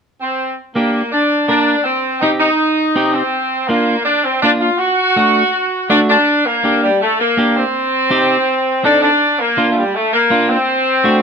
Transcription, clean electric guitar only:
0.75 A#3 D4 G4
1.48 A#3 D4 A#4
2.23 C4 D#4 G4
2.96 C4 D#4 G4
3.69 A#3 D4 F4
4.43 A#3 D4 F4
5.16 A3 D4 F#4
5.90 A3 D4 F#4
6.64 A#3 D4 G4
7.37 A#3 D4 G4
8.10 C4 D#4 G4
8.84 C4 D#4 A4
9.57 A#3 D4 F4
10.30 A#3 D4 F4
11.04 A3 D4 F#4

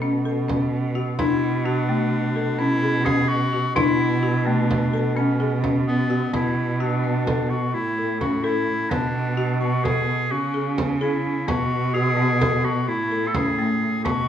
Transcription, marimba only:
0.02 C#4
0.25 A4
0.48 C#4
0.95 F#4
1.19 D4
1.66 F#4
1.89 A3
2.36 A4
2.59 C#4
2.82 G#4
3.06 C#4
3.53 F#4
3.76 D4
4.23 F#4
4.46 A3
4.93 A4
5.17 C#4
5.40 G#4
5.64 C#4
6.10 F#4
6.33 B3
6.80 F#4
7.04 B3
7.27 A4
7.51 B3
7.98 A4
8.21 C#4
8.44 A4
8.91 B3
9.37 F#4
9.61 B3
9.84 A4
10.07 B3
10.54 G#4
10.78 B3
11.01 G#4
11.48 B3
11.94 F#4
12.17 B3
12.41 A4
12.65 B3
13.11 A4
13.35 C#4
13.59 A3
14.05 B3

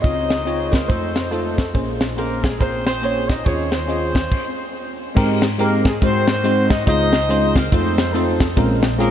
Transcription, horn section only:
0.02 D#4 G#4 C5 D#5
0.71 A#3 A#4
0.88 C4 D#4 A4 C5
1.32 A3 C4 D#4 A4
2.17 A#3 A#4
2.43 G#3 G#4
2.59 C4 F4 G#4 C5
2.85 C4 F4 G#4 C5
3.28 D#4 D#5
3.45 C#4 F4 G#4 C#5
3.70 C4 F4 G#4 C5
5.60 A#3 A#4
5.86 G#3 G#4
6.02 C4 D#4 F#4 C5
6.29 C4 D#4 F#4 C5
6.71 D#4 D#5
6.87 D#4 G#4 C5 D#5
7.55 A#3 A#4
7.71 C4 D#4 A4 C5
8.14 A3 C4 D#4 A4
9.00 A#3 A#4

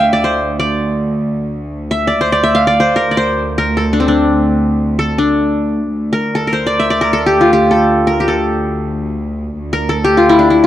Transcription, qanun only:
Already playing: C5 D5 G5
0.00 E5
0.13 D5
0.24 C5
0.60 D5
1.91 E5
2.07 D5
2.21 C5
2.32 D5
2.43 E5
2.55 F5
2.67 D5
2.80 C5
2.96 A#4
3.11 D5
3.17 C5
3.58 A#4
3.77 A4
3.93 D4
4.00 C4
4.08 D4
4.99 A4
5.18 D4
6.13 A#4
6.35 A4
6.47 A#4
6.53 C5
6.67 D5
6.80 E5
6.90 D5
7.01 A#4
7.13 A4
7.26 G4
7.41 F4
7.53 G4
7.71 A4
8.07 A#4
8.20 G4
8.28 A4
9.73 A#4
9.89 A4
10.04 G4
10.17 F4
10.29 E4
10.39 D4
10.50 E4
10.64 F4

